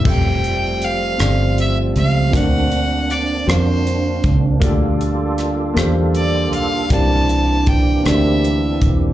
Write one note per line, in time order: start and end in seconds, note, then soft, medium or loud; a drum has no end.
0.03 1.16 F1 medium
0.03 2.32 F3 medium
0.03 2.32 G3 medium
0.03 2.32 G3 soft
0.03 2.32 A3 soft
0.03 0.88 C4 soft
0.03 4.58 C4 soft
0.03 0.89 F4 soft
0.03 2.32 F4 medium
0.03 0.89 G4 medium
0.03 0.90 A4 medium
0.03 0.90 E5 medium
0.03 kick medium
0.03 crash medium
0.08 0.86 G5 medium
0.44 closed hi-hat soft
0.82 1.59 F5 medium
0.82 closed hi-hat soft
1.18 1.92 G1 medium
1.18 2.03 C4 soft
1.18 2.03 F4 soft
1.18 2.04 G4 soft
1.18 2.04 A4 soft
1.18 2.05 D5 medium
1.18 cross-stick medium
1.18 closed hi-hat medium
1.58 1.77 E5 medium
1.58 closed hi-hat soft
1.96 2.31 C#2 medium
1.96 2.38 F5 medium
1.96 closed hi-hat soft
2.32 3.44 D2 medium
2.32 3.44 D3 soft
2.32 9.13 A#3 soft
2.32 3.17 C4 medium
2.32 4.60 C4 soft
2.32 3.17 D4 medium
2.32 4.59 D4 medium
2.32 4.60 D4 medium
2.32 3.18 F#4 medium
2.32 3.18 A#4 medium
2.32 3.19 D5 medium
2.32 kick medium
2.32 closed hi-hat medium
2.36 3.13 F#5 medium
2.72 closed hi-hat soft
3.10 3.50 D5 medium
3.10 cross-stick soft
3.10 closed hi-hat soft
3.46 4.20 F2 medium
3.46 4.31 C4 soft
3.46 4.31 F4 soft
3.46 4.32 F#4 soft
3.46 4.32 A#4 soft
3.46 4.34 C5 medium
3.46 4.32 F5 medium
3.46 cross-stick medium
3.46 closed hi-hat soft
3.87 closed hi-hat soft
4.24 4.59 C#2 medium
4.24 kick medium
4.24 closed hi-hat soft
4.60 5.72 D2 medium
4.60 5.72 D3 medium
4.60 6.89 G3 medium
4.60 5.45 A#3 medium
4.60 9.13 D4 medium
4.60 5.46 F4 medium
4.60 6.88 F4 medium
4.60 5.46 G4 medium
4.60 9.13 G4 medium
4.60 5.46 A4 medium
4.60 6.89 A4 medium
4.60 5.47 D5 medium
4.60 kick loud
4.60 closed hi-hat medium
4.64 6.89 A4 medium
5.01 closed hi-hat soft
5.38 cross-stick soft
5.38 closed hi-hat soft
5.74 6.53 E2 medium
5.74 6.59 A#3 medium
5.74 6.59 F4 medium
5.74 6.60 G4 medium
5.74 6.60 A4 medium
5.74 6.61 C5 medium
5.74 cross-stick medium
5.74 closed hi-hat soft
6.15 6.51 D5 medium
6.15 closed hi-hat soft
6.53 6.88 B1 medium
6.53 6.95 F5 medium
6.53 closed hi-hat soft
6.89 8.00 C2 medium
6.89 8.00 C3 soft
6.89 9.13 E3 medium
6.89 9.13 A#3 medium
6.89 7.74 C4 medium
6.89 9.13 C4 medium
6.89 9.13 C4 soft
6.89 9.13 D4 medium
6.89 7.74 E4 soft
6.89 7.74 G4 medium
6.89 7.75 A#4 medium
6.89 7.75 D5 medium
6.89 7.70 A5 medium
6.89 kick medium
6.89 closed hi-hat medium
7.29 closed hi-hat soft
7.66 8.05 G5 medium
7.66 kick medium
7.66 closed hi-hat soft
8.03 8.77 D2 medium
8.03 8.88 C4 medium
8.03 8.11 D4 soft
8.03 8.89 G4 soft
8.03 8.89 A#4 soft
8.03 8.90 D5 medium
8.03 8.87 E5 medium
8.03 cross-stick medium
8.03 closed hi-hat medium
8.10 8.91 E4 soft
8.44 closed hi-hat soft
8.81 9.13 E1 medium
8.81 kick medium
8.81 closed hi-hat soft